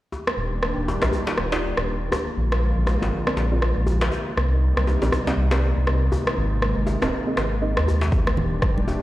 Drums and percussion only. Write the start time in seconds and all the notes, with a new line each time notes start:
0.12 djembe tone
0.27 cross-stick
0.63 cross-stick
0.88 djembe tone
1.02 cross-stick, djembe slap, djembe tone
1.13 djembe bass
1.27 djembe slap
1.38 cross-stick
1.52 djembe slap
1.77 cross-stick
2.12 cross-stick, djembe tone, djembe bass
2.52 cross-stick
2.87 cross-stick, djembe tone
3.02 djembe slap, djembe tone
3.27 cross-stick
3.37 djembe slap
3.62 cross-stick
3.87 djembe bass
4.01 cross-stick, djembe slap
4.11 djembe tone
4.37 cross-stick
4.77 cross-stick
4.87 djembe tone
5.02 djembe slap, djembe tone
5.12 cross-stick, djembe bass
5.27 djembe slap
5.51 cross-stick, djembe slap
5.87 cross-stick
6.12 djembe tone, djembe bass
6.27 cross-stick
6.62 cross-stick
6.87 djembe tone
7.02 cross-stick, djembe slap, djembe tone
7.37 cross-stick, djembe slap
7.77 cross-stick
7.88 djembe bass
8.01 djembe slap
8.12 kick, djembe tone
8.27 cross-stick, muted conga
8.37 low conga
8.62 kick, cross-stick, muted conga
8.78 high conga
8.88 djembe tone